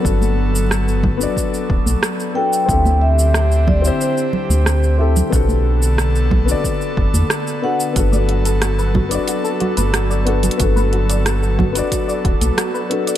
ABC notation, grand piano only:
X:1
M:4/4
L:1/16
Q:1/4=91
K:G
V:1 name="Grand piano"
[B,DFA]6- [B,DFA] [B,DFd]6- [B,DFd] [B,DFA]2 | [CEGA]6- [CEGA] [CEGc]6- [CEGc] [CEGA]2 | [B,DFA]6- [B,DFA] [B,DFd]6- [B,DFd] [B,DFA]2 | [B,DFA]6- [B,DFA] [B,DFd]6- [B,DFd] [B,DFA]2 |
[B,DFA]6- [B,DFA] [B,DFd]6- [B,DFd] [B,DFA]2 |]